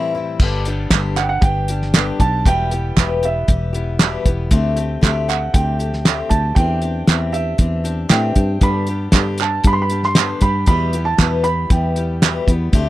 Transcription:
Already playing: A2 E3 G3 A3 C4 E4 G4
0.15 G3 C4 E4
0.40 G1 G2 D3 G3 B3 D4 G4, kick, crash
0.65 B3 D4 G4, closed hi-hat
0.69 G3
0.90 G1 G2 D3 G3 B3 D4, kick, snare, clap, closed hi-hat
0.95 G4
1.16 G3 B3 D4 G4 F#5, snare, clap, closed hi-hat
1.22 G5
1.29 F#5
1.41 G1 G3 B3 D4 G4 G5, kick, closed hi-hat
1.68 G3 B3 D4 G4, closed hi-hat
1.82 snare
1.94 G2 D3 G3 B3 D4 G4, snare, clap, closed hi-hat
2.20 B1 G3 B3 D4 G4 A5, kick, closed hi-hat
2.45 E1 E2 B2 E3 G3 B3 G4 G5, kick, closed hi-hat
2.71 E3 G3 B3 G4, closed hi-hat
2.97 E1 E2 B2 E3 G3 B3 G4, kick, snare, clap, closed hi-hat
3.23 E3 G3 B3 G4 E5, closed hi-hat
3.48 E1 E3 G3 B3 G4, kick, closed hi-hat
3.73 E3 G3 B3 G4, closed hi-hat
3.99 E2 B2 E3 G3 B3 G4, snare, clap, closed hi-hat
4.25 E1 E3 G3 B3 G4, kick, closed hi-hat
4.51 D2 D3 A3 C4 G4, kick, closed hi-hat
4.76 A3 C4 G4, closed hi-hat
5.01 D2 D3 A3 C4 G4, kick, snare, clap, closed hi-hat
5.28 A3 C4 G4 F#5, clap, closed hi-hat
5.54 D2 D3 A3 C4 G4 G5, kick, closed hi-hat
5.79 A3 C4 G4, closed hi-hat
5.93 snare
6.05 D3 A3 C4 G4, snare, clap, closed hi-hat
6.29 D2 A3 C4 G4 A5, kick, closed hi-hat
6.55 E2 E3 C4 D4 G4 G5, kick, closed hi-hat
6.82 C4 D4 G4, closed hi-hat
7.07 E2 E3 C4 D4 G4, snare, clap, closed hi-hat
7.32 C4 D4 G4 E5, closed hi-hat
7.58 E2 E3 C4 D4 G4, kick, closed hi-hat
7.84 C4 D4 G4, closed hi-hat
8.09 A2 E3 C4 D4 G4 G5, snare, clap, closed hi-hat
8.35 G2 C4 D4 G4, kick, closed hi-hat
8.61 G2 D3 G3 B3 D4 G4 B5, kick, closed hi-hat
8.87 B3 D4 G4, closed hi-hat
8.91 G3
9.12 G2 D3 G3 B3 D4 G4, kick, snare, clap, closed hi-hat
9.38 D4 G4 A5, clap, closed hi-hat
9.42 G3 B3
9.64 G2 G3 B3 D4 B5, kick, closed hi-hat
9.68 G4
9.73 C6
9.82 B5
9.90 G3 B3 D4 G4, closed hi-hat
10.03 C6, snare
10.15 G2 D3 G3 B3 D4 G4, snare, clap, closed hi-hat
10.41 G2 B3 D4 G4 B5, kick, closed hi-hat
10.45 G3
10.66 E2 B2 E3 G3 B3 G4 B5, kick, closed hi-hat
10.93 E3 G3 B3 G4, closed hi-hat
11.05 A5
11.18 E2 B2 E3 G3 B3 G4, kick, snare, clap, closed hi-hat
11.44 G3 B3 G4 B5, closed hi-hat
11.70 E2 E3 G3 B3 G4 G5, kick, closed hi-hat
11.96 E3 G3 B3 G4, closed hi-hat
12.22 E2 B2 E3 G3 B3 G4, snare, clap, closed hi-hat
12.47 E2 E3 G3 B3 G4, kick, closed hi-hat
12.73 D2 D3 A3 C4 G4, kick, closed hi-hat

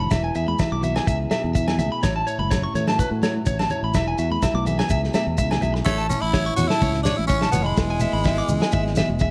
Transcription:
Already playing: D3 E3 E4 F#4
0.10 E1 E3 E5, kick, snare, low agogo, shekere
0.24 G#5
0.35 E2 G#4 E5, shekere
0.48 B5, high conga
0.59 E4 E5, kick, snare, low conga, low agogo, shekere
0.72 B1 D6
0.81 B3 F#4 E5, low conga, shekere
0.95 G#4 G#5, snare, low agogo
1.07 C#2 G#4 E5, kick, shekere
1.31 B2 G#4 E5, snare, high conga, low agogo, shekere
1.44 E2
1.55 E4 E5, kick, shekere
1.68 G#5, snare, low agogo
1.79 C#2 G#4 E5, high conga, low conga, shekere
1.92 B5
2.02 A1 A2 C#5, kick, snare, low agogo, shekere
2.16 A5
2.27 E4 C#5, shekere
2.38 F#1 B5, high conga
2.51 C#4 C#5, kick, snare, low conga, low agogo, shekere
2.64 C#6
2.73 A2 E3 E4 C#5, low conga, shekere
2.88 A5, snare, low agogo
2.98 F#4 B4, kick, shekere
3.11 A2
3.21 A2 E4 C#5, snare, high conga, low agogo, shekere
3.46 A1 C#4 C#5, kick, shekere
3.59 A5, snare, low agogo
3.70 E4 C#5, low conga, shekere
3.83 A1 B5
3.93 E1 E3 E5, kick, snare, low agogo, shekere
4.08 G#5
4.18 E2 F#4 E5, shekere
4.30 G#4 B5, high conga
4.42 E4 E5, kick, snare, low conga, low agogo, shekere
4.54 B1 D6, high conga
4.65 B3 G#4 E5, low conga, shekere
4.79 G#5, snare, low agogo
4.89 C#2 G#4 E5, kick, shekere
5.04 snare
5.14 B2 G#4 E5, snare, high conga, low agogo, shekere
5.27 E2
5.38 C#2 E4 E5, kick, shekere
5.51 G#5, snare, high conga, low agogo
5.62 B1 G#4 E5, high conga, low conga, shekere
5.74 muted clean electric guitar stroke, snare
5.85 A1 A2 A3 C#5, kick, snare, shekere
5.98 A5, snare
6.09 C#4 E4, high conga, shekere
6.21 A1 E4 B5
6.33 E3 C#4 C#5, kick, snare, shekere
6.46 C#6
6.56 E2 F#4 C#5, muted clean electric guitar stroke, low conga, shekere
6.68 E4 A5, snare, shekere
6.81 C#2 C#4 C#5, kick, high conga, shekere
6.94 snare
7.03 A2 D4 E4 C#5, snare, low conga, shekere
7.16 A1 E4, high conga
7.27 C#3 C#4 C#5, kick, shekere
7.42 A5, snare
7.51 F1 B3 C#5, high conga, low conga, shekere
7.63 G#3 B5
7.77 E1 E3 B3 E4 G#4, muted clean electric guitar stroke, kick, snare, shekere
7.90 G#5
8.00 G#4 E5, high conga, shekere
8.13 G#1 B5
8.24 B3 E4 E5, kick, snare, shekere
8.38 D6
8.48 C#2 G#4, low conga, shekere
8.60 G#5, snare, shekere
8.72 G#1 G#4 E5, kick, high conga, shekere
8.86 snare
8.95 B2 G#4 E5, snare, low conga, shekere
9.09 E1, high conga
9.19 G#4 E5, kick, shekere

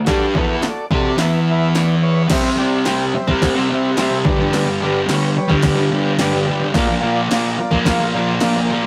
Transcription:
0.05 G3 D4 F#4 G4 A4 D5, kick, snare, open hi-hat
0.34 E3 B3 E4 F#4 A4 B4, kick
0.62 F#4, muted distorted electric guitar stroke, snare, open hi-hat
0.67 A4 D5
0.91 C4 F#4 G4 A4 C5 D5, kick
1.17 E3 B3 E4, snare, open hi-hat
1.21 B4 E5
1.50 E4 B4 E5
1.75 E4 B4 D5, snare, open hi-hat
2.02 E4 B4 C#5
2.28 C3 G3 C4 G4 C5 E5, kick, snare, crash
2.42 G3 C4
2.56 C3 G3 C4 G4 C5 D5
2.84 C3 G3 G4 C5 G5, snare, crash
2.89 C4
3.11 G4 C5 E5, muted distorted electric guitar stroke
3.28 G3 C4, kick
3.41 G4 C5 F#5, kick, snare, crash
3.56 G3 C4
3.69 C3 G3 C4 G4
3.73 C5 E5
3.96 C3 G3 C4 G4 C5, snare, crash
4.01 E5
4.10 G3 C4
4.24 G2 D3 G3 G4 B4 D5, kick
4.39 D3 G3
4.52 G2 D3 G3, snare, crash
4.66 D3 G3
4.81 G2 D3 G3 G4 B4 D5
5.06 G2 D3 G3, snare, crash
5.11 G4 B4 C#5
5.36 G4 B4 C#5, muted distorted electric guitar stroke
5.48 D3 G3, kick
5.62 G4, kick, snare, crash
5.67 B4 D5
5.76 D3 G3
5.90 G2 D3 G3
5.95 G4 B4 D5
6.18 G2 D3 G3 G4 B4 D5, snare, crash
6.33 D3 G3
6.46 G2 D3 G4 B4 D5
6.51 G3
6.60 D3 G3
6.74 A#2 F3 A#3 F4 A#4 D5, kick, snare, crash
6.87 F3 A#3
7.01 A#2 F3 F4 A#4 D5
7.05 A#3
7.29 A#2 F3 A#3 F4, snare, crash
7.33 A#4 D5
7.58 F4 A#4 D5, muted distorted electric guitar stroke
7.71 F3 A#3, kick
7.85 F4 A#4, kick, snare, crash
7.89 F5
8.00 F3 A#3
8.12 A#2 F3 F4 A#4 D5
8.17 A#3
8.40 A#2 F3 F4 A#4 D5, snare, crash
8.44 A#3
8.56 F3 A#3
8.65 F4 A#4 D5
8.70 A#2 F3 A#3

